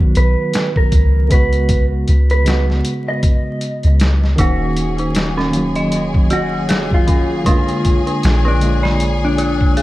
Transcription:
0.00 0.13 B1 medium
0.00 1.33 D#3 medium
0.00 1.33 F#3 medium
0.00 1.32 B3 medium
0.00 1.33 F#4 medium
0.15 0.36 B1 medium
0.15 0.70 B4 medium
0.15 closed hi-hat medium
0.53 snare loud
0.53 closed hi-hat medium
0.76 1.26 A#4 medium
0.76 kick medium
0.92 2.05 C#2 medium
0.92 kick medium
0.92 closed hi-hat medium
1.28 2.41 C#3 medium
1.28 2.42 G#3 medium
1.28 2.43 B3 medium
1.28 1.85 B4 medium
1.28 kick loud
1.28 closed hi-hat medium
1.34 2.44 F#4 medium
1.53 closed hi-hat soft
1.69 kick medium
1.69 closed hi-hat medium
2.08 2.82 C#2 medium
2.08 closed hi-hat medium
2.30 2.64 B4 medium
2.30 closed hi-hat soft
2.44 4.33 C#3 medium
2.44 4.34 G#3 medium
2.44 4.35 B3 medium
2.44 snare medium
2.44 closed hi-hat medium
2.49 4.36 F#4 medium
2.70 snare soft
2.85 closed hi-hat medium
3.08 4.26 D#5 medium
3.23 kick medium
3.23 closed hi-hat medium
3.61 closed hi-hat medium
3.83 4.36 C#2 medium
3.83 closed hi-hat soft
4.00 snare loud
4.00 closed hi-hat medium
4.24 snare soft
4.36 7.43 D#1 medium
4.36 5.49 D#3 medium
4.36 5.50 A#3 medium
4.36 4.97 D#4 loud
4.36 9.82 G#4 medium
4.36 9.82 C#5 medium
4.36 kick medium
4.36 closed hi-hat medium
4.40 5.51 C#4 medium
4.40 4.93 F#4 medium
4.40 5.51 F#4 medium
4.77 closed hi-hat medium
4.98 5.35 D#4 medium
4.98 closed hi-hat soft
5.15 snare loud
5.15 closed hi-hat medium
5.37 5.74 C#4 loud
5.37 snare soft
5.51 7.41 D#3 medium
5.51 7.42 A#3 medium
5.51 closed hi-hat medium
5.55 7.44 F#3 medium
5.55 7.43 C#4 medium
5.75 6.29 D#5 loud
5.75 closed hi-hat soft
5.92 closed hi-hat medium
6.14 kick medium
6.30 6.67 F#4 medium
6.30 6.86 F#4 medium
6.30 closed hi-hat medium
6.69 7.06 G#4 medium
6.69 snare loud
6.69 closed hi-hat medium
6.91 7.43 F4 medium
6.91 kick medium
7.07 7.44 C#4 medium
7.07 kick medium
7.07 closed hi-hat medium
7.44 8.56 D3 medium
7.44 8.57 G#3 medium
7.44 8.58 A#3 medium
7.44 8.04 D4 loud
7.44 kick loud
7.44 closed hi-hat medium
7.49 8.01 F4 medium
7.49 8.59 F4 medium
7.69 closed hi-hat soft
7.85 kick medium
7.85 closed hi-hat medium
8.07 8.43 D4 medium
8.07 closed hi-hat soft
8.23 9.82 A#1 medium
8.23 snare loud
8.23 closed hi-hat medium
8.45 8.81 D4 medium
8.60 9.82 D3 medium
8.60 9.82 G#3 medium
8.60 9.82 A#3 medium
8.60 closed hi-hat medium
8.65 9.82 F4 medium
8.83 9.37 D5 loud
8.83 snare medium
9.00 closed hi-hat medium
9.25 9.82 D4 medium
9.38 9.75 F4 medium
9.38 closed hi-hat medium
9.61 kick medium
9.77 9.82 G#4 medium
9.77 closed hi-hat medium

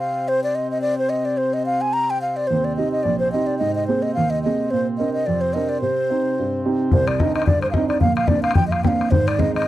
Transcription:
0.00 2.48 C3 soft
0.00 2.48 C4 medium
0.00 0.30 F5 medium
0.28 0.43 C5 loud
0.44 0.57 D5 medium
0.55 0.70 D#5 medium
0.71 0.81 D#5 medium
0.82 0.97 D5 medium
0.98 1.11 C5 medium
1.09 1.27 D#5 medium
1.25 1.39 D5 medium
1.37 1.55 C5 medium
1.53 1.65 D#5 medium
1.66 1.83 F5 medium
1.81 1.95 G#5 medium
1.93 2.12 A#5 loud
2.10 2.21 G5 medium
2.21 2.38 F5 medium
2.36 2.49 D5 medium
2.47 2.77 D#2 soft
2.47 6.95 C3 medium
2.47 6.95 C4 medium
2.47 2.66 C5 medium
2.64 2.76 D5 medium
2.76 2.99 C4 soft
2.76 3.00 D#4 soft
2.76 3.00 G4 soft
2.76 2.91 D#5 medium
2.92 3.04 D#5 medium
3.03 3.32 A#1 medium
3.03 3.19 D5 medium
3.19 3.31 C5 medium
3.32 3.55 C4 soft
3.32 3.56 D#4 soft
3.32 3.56 G4 soft
3.32 3.48 D#5 medium
3.46 3.58 D5 medium
3.58 3.87 G#2 medium
3.58 3.74 D#5 loud
3.75 3.87 D#5 medium
3.87 4.10 A#3 soft
3.87 4.11 C4 soft
3.87 4.11 G#4 medium
3.87 4.04 C5 medium
4.02 4.14 D#5 medium
4.14 4.43 D#2 medium
4.14 4.32 F5 medium
4.30 4.42 D#5 medium
4.43 4.67 A#3 soft
4.43 4.67 C4 soft
4.43 4.67 G#4 medium
4.43 4.72 D#5 medium
4.71 4.98 A#2 medium
4.71 4.86 C5 medium
4.98 5.21 C4 soft
4.98 5.21 D4 soft
4.98 5.21 A#4 medium
4.98 5.12 D#5 medium
5.13 5.28 D#5 medium
5.26 5.54 F2 medium
5.26 5.42 D5 medium
5.41 5.55 C5 medium
5.53 5.77 C4 soft
5.53 5.77 D4 soft
5.53 5.77 A#4 medium
5.53 5.70 D#5 medium
5.69 5.81 D5 medium
5.81 6.09 C3 medium
5.81 6.60 C5 medium
6.10 6.32 C4 soft
6.10 6.32 D#4 soft
6.10 6.32 G4 soft
6.39 6.65 G2 soft
6.65 6.87 C4 soft
6.65 6.87 D#4 soft
6.65 6.87 G4 medium
6.92 7.99 C2 medium
6.92 7.19 C3 medium
6.92 7.09 C5 medium
6.92 bodhran medium
7.07 7.21 D5 medium
7.07 bodhran medium
7.20 7.42 C4 soft
7.20 7.42 D4 soft
7.20 7.43 D#4 medium
7.20 7.35 D#5 medium
7.20 bodhran medium
7.35 7.46 D#5 medium
7.35 bodhran medium
7.42 bodhran medium
7.46 7.75 G2 medium
7.46 7.61 D5 loud
7.46 bodhran medium
7.62 7.70 C5 medium
7.62 bodhran medium
7.71 7.88 D#5 medium
7.71 7.75 F5 medium
7.71 bodhran medium
7.75 7.97 C4 soft
7.75 7.98 D4 soft
7.75 7.97 D#4 medium
7.89 8.00 D5 medium
7.89 bodhran medium
8.01 9.09 A#1 soft
8.01 8.29 A#2 medium
8.01 8.16 F5 medium
8.01 bodhran medium
8.16 8.29 F5 medium
8.16 bodhran medium
8.28 8.52 A#3 medium
8.28 8.52 C4 soft
8.28 8.52 D4 medium
8.28 8.42 D5 medium
8.28 bodhran medium
8.43 8.55 F5 loud
8.43 bodhran medium
8.51 bodhran medium
8.55 8.84 F2 medium
8.55 8.67 G5 loud
8.55 bodhran medium
8.67 8.73 D#5 medium
8.71 8.83 F5 medium
8.71 bodhran medium
8.84 9.06 A#3 medium
8.84 9.07 C4 soft
8.84 9.07 D4 medium
8.84 9.12 F5 medium
8.84 8.89 G5 medium
8.84 bodhran medium
9.01 bodhran medium
9.11 9.68 G#1 medium
9.11 9.39 G#2 medium
9.11 9.29 C5 medium
9.11 bodhran medium
9.27 9.41 D5 medium
9.27 bodhran medium
9.38 9.61 G#3 medium
9.38 9.61 C4 soft
9.38 9.61 D#4 medium
9.38 9.54 D#5 medium
9.38 bodhran medium
9.55 9.68 D#5 medium
9.55 bodhran medium
9.62 bodhran medium

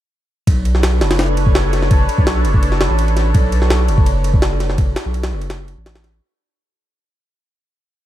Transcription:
0.47 1.03 B1 loud
0.47 6.18 D4 medium
0.47 6.18 A4 medium
0.47 6.18 B4 medium
0.47 6.18 C#5 medium
0.47 kick loud
0.47 ride medium
0.65 ride medium
0.75 snare soft
0.83 snare loud
0.83 ride medium
1.01 2.08 F#1 loud
1.01 snare loud
1.01 ride medium
1.11 snare loud
1.11 ride medium
1.19 snare loud
1.19 ride medium
1.37 ride medium
1.47 kick medium
1.55 snare loud
1.55 ride medium
1.73 snare soft
1.73 ride medium
1.82 snare soft
1.91 kick loud
1.91 ride medium
2.09 ride medium
2.18 2.46 B1 loud
2.18 kick loud
2.27 snare loud
2.27 ride medium
2.45 2.89 F#1 loud
2.45 ride medium
2.54 kick medium
2.63 ride medium
2.72 snare medium
2.81 snare loud
2.81 ride medium
2.90 3.33 A1 loud
2.99 ride medium
3.08 ride soft
3.17 snare soft
3.17 ride medium
3.34 3.90 B1 loud
3.34 kick loud
3.34 ride medium
3.52 ride medium
3.62 snare soft
3.70 snare loud
3.70 ride loud
3.88 4.95 F#1 loud
3.88 ride medium
3.98 kick loud
4.06 ride medium
4.24 ride medium
4.34 kick loud
4.42 snare loud
4.42 ride medium
4.60 snare soft
4.60 ride medium
4.70 snare soft
4.78 kick loud
4.78 ride medium
4.96 snare loud
4.96 ride medium
5.06 5.34 B1 loud
5.14 ride medium
5.23 snare loud
5.23 ride medium
5.32 5.76 F#1 loud
5.42 ride medium
5.50 snare loud
5.50 ride medium
5.68 ride medium
5.78 6.21 A1 loud
5.86 snare loud
5.86 ride medium
5.96 snare loud
5.96 ride medium
6.04 snare soft
6.04 ride medium

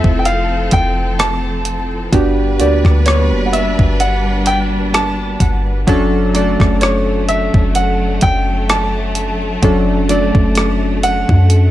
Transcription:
0.00 2.09 F3 medium
0.00 2.15 A3 medium
0.00 2.09 C4 medium
0.00 2.14 C4 medium
0.00 2.15 E4 medium
0.00 2.15 F4 loud
0.00 2.09 A4 medium
0.00 0.21 E5 medium
0.00 0.31 G5 soft
0.00 0.57 A5 medium
0.04 0.70 F1 loud
0.04 kick loud
0.19 0.25 G5 medium
0.25 0.69 F5 medium
0.25 closed hi-hat medium
0.71 2.09 F1 loud
0.71 1.21 G5 loud
0.71 kick medium
0.71 closed hi-hat medium
1.19 1.87 A5 loud
1.19 cross-stick loud
1.19 closed hi-hat medium
1.65 closed hi-hat medium
2.12 2.61 G1 loud
2.12 5.84 G3 medium
2.12 2.46 B3 medium
2.12 5.84 D4 medium
2.12 2.46 D4 medium
2.12 2.46 F#4 medium
2.12 2.47 G4 loud
2.12 5.84 B4 medium
2.12 kick loud
2.12 closed hi-hat medium
2.59 2.84 D2 medium
2.59 2.67 A#3 medium
2.59 3.88 D4 medium
2.59 3.88 F#4 medium
2.59 3.89 G4 medium
2.59 3.08 D5 medium
2.59 closed hi-hat medium
2.66 3.91 B3 medium
2.85 3.33 D2 loud
2.85 kick loud
2.85 cross-stick medium
3.06 3.48 C#5 medium
3.06 cross-stick loud
3.06 closed hi-hat medium
3.32 3.76 F#1 loud
3.46 3.53 F#5 medium
3.53 4.01 E5 medium
3.53 closed hi-hat medium
3.79 5.37 G1 loud
3.79 kick loud
4.00 4.44 F#5 loud
4.00 closed hi-hat medium
4.46 4.58 G5 loud
4.46 closed hi-hat medium
4.94 5.62 A5 loud
4.94 cross-stick loud
4.94 closed hi-hat medium
5.40 5.86 G1 loud
5.40 6.31 F#5 medium
5.40 kick medium
5.40 closed hi-hat medium
5.87 6.57 F#1 loud
5.87 6.20 F#3 medium
5.87 11.71 F#3 medium
5.87 11.71 A3 medium
5.87 6.21 C#4 medium
5.87 6.21 D4 medium
5.87 6.21 A4 loud
5.87 kick loud
5.87 closed hi-hat medium
6.34 7.62 F#3 medium
6.34 7.63 A3 medium
6.34 7.63 D4 medium
6.34 7.63 A4 medium
6.34 6.83 D5 medium
6.34 closed hi-hat medium
6.60 7.50 F#1 loud
6.60 kick loud
6.60 cross-stick medium
6.81 7.30 C#5 medium
6.81 cross-stick loud
6.81 closed hi-hat medium
7.28 7.77 E5 medium
7.28 closed hi-hat medium
7.54 8.20 F#1 loud
7.54 kick loud
7.75 8.24 F#5 loud
7.75 closed hi-hat medium
8.21 9.59 F#1 loud
8.21 8.71 G5 loud
8.21 kick medium
8.21 closed hi-hat medium
8.69 9.38 A5 loud
8.69 cross-stick loud
8.69 closed hi-hat medium
9.15 closed hi-hat medium
9.62 10.32 F#1 loud
9.62 9.96 F#3 medium
9.62 9.96 C#4 medium
9.62 9.96 D4 medium
9.62 9.97 A4 loud
9.62 kick loud
9.62 closed hi-hat medium
10.09 11.38 F#3 medium
10.09 11.38 A3 medium
10.09 11.38 D4 medium
10.09 11.39 A4 medium
10.09 11.06 D5 medium
10.09 closed hi-hat medium
10.35 11.25 F#1 loud
10.35 kick loud
10.55 cross-stick loud
10.55 closed hi-hat medium
11.03 11.71 F#5 loud
11.03 closed hi-hat medium
11.29 11.71 F#2 loud
11.29 kick loud
11.50 closed hi-hat medium

